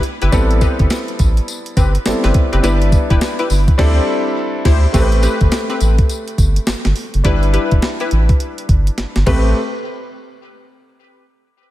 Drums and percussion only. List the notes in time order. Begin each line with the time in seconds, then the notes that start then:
0.03 closed hi-hat
0.22 closed hi-hat
0.32 kick, closed hi-hat, tambourine
0.51 closed hi-hat
0.61 kick, closed hi-hat, tambourine
0.79 kick, closed hi-hat
0.90 snare, closed hi-hat, tambourine
1.08 closed hi-hat
1.19 kick, closed hi-hat, tambourine
1.37 closed hi-hat
1.48 closed hi-hat, tambourine
1.66 closed hi-hat
1.77 kick, closed hi-hat, tambourine
1.95 closed hi-hat
2.06 snare, closed hi-hat, tambourine
2.24 snare, closed hi-hat
2.34 kick, closed hi-hat
2.53 closed hi-hat
2.64 closed hi-hat, tambourine
2.82 closed hi-hat
2.92 kick, closed hi-hat, tambourine
3.10 kick, closed hi-hat
3.21 snare, closed hi-hat, tambourine
3.39 closed hi-hat
3.50 open hi-hat, tambourine
3.68 kick, closed hi-hat
3.79 kick, snare, crash
4.65 kick, snare, crash
4.94 kick, closed hi-hat, crash, tambourine
5.12 closed hi-hat
5.23 closed hi-hat, tambourine
5.41 kick, closed hi-hat
5.52 snare, closed hi-hat, tambourine
5.70 closed hi-hat
5.81 closed hi-hat, tambourine
5.98 kick, closed hi-hat
6.09 closed hi-hat, tambourine
6.28 closed hi-hat
6.38 kick, closed hi-hat, tambourine
6.56 closed hi-hat
6.67 snare, closed hi-hat, tambourine
6.85 snare, closed hi-hat
6.96 open hi-hat
7.14 closed hi-hat
7.25 kick, closed hi-hat
7.43 closed hi-hat
7.54 closed hi-hat
7.71 kick, closed hi-hat
7.82 snare, closed hi-hat
8.00 closed hi-hat
8.11 closed hi-hat
8.29 kick, closed hi-hat
8.40 closed hi-hat
8.58 closed hi-hat
8.69 kick, closed hi-hat
8.87 closed hi-hat
8.98 snare, closed hi-hat
9.16 snare, closed hi-hat
9.27 kick, crash